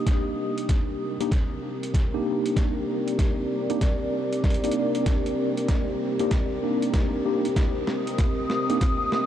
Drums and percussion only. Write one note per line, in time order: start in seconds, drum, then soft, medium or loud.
0.07 kick loud
0.07 snare medium
0.07 closed hi-hat medium
0.58 closed hi-hat medium
0.69 kick medium
0.69 snare medium
0.69 closed hi-hat medium
1.21 closed hi-hat medium
1.31 kick loud
1.31 snare medium
1.31 closed hi-hat medium
1.83 closed hi-hat soft
1.94 kick medium
1.94 snare medium
1.94 closed hi-hat medium
2.46 closed hi-hat medium
2.56 kick medium
2.56 snare medium
2.56 closed hi-hat medium
3.08 closed hi-hat soft
3.19 kick loud
3.19 snare medium
3.19 closed hi-hat medium
3.70 closed hi-hat medium
3.81 kick medium
3.81 snare medium
3.81 closed hi-hat medium
4.33 closed hi-hat soft
4.44 kick loud
4.44 snare medium
4.44 closed hi-hat soft
4.50 closed hi-hat soft
4.54 closed hi-hat soft
4.64 closed hi-hat soft
4.64 closed hi-hat medium
4.71 closed hi-hat medium
4.95 closed hi-hat soft
5.06 kick loud
5.06 snare medium
5.06 closed hi-hat medium
5.26 closed hi-hat soft
5.57 closed hi-hat soft
5.69 kick medium
5.69 snare medium
5.69 closed hi-hat medium
6.19 closed hi-hat soft
6.31 kick loud
6.31 snare medium
6.31 closed hi-hat medium
6.82 closed hi-hat medium
6.94 kick medium
6.94 snare medium
6.94 closed hi-hat medium
7.45 closed hi-hat soft
7.56 kick loud
7.56 snare medium
7.56 closed hi-hat medium
7.87 snare medium
8.07 closed hi-hat soft
8.18 kick medium
8.18 snare medium
8.18 closed hi-hat medium
8.50 snare medium
8.70 closed hi-hat soft
8.81 kick medium
8.81 snare medium
8.81 closed hi-hat medium
9.12 snare medium